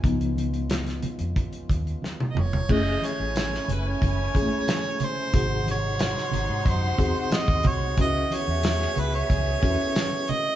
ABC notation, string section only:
X:1
M:4/4
L:1/8
Q:1/4=91
K:F#dor
V:1 name="String section"
z8 | [CEg]8 | [Df^b]8 | [B,Ge]8 |]